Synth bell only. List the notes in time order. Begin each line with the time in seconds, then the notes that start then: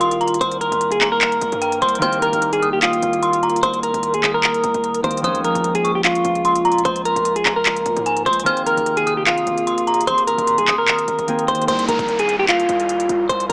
0.01 C6
0.21 A#5
0.41 C6
1.01 A#5
1.62 G5
1.82 C6
2.02 F6
2.62 D#6
3.23 C6
3.43 A#5
3.63 C6
4.23 D#6
5.24 D#6
5.84 C#6
6.45 C6
6.65 A#5
6.85 C6
7.46 A#5
8.06 G#5
8.26 C6
8.46 F6
9.07 D#6
9.67 C6
9.87 A#5
10.07 C6
10.68 D#6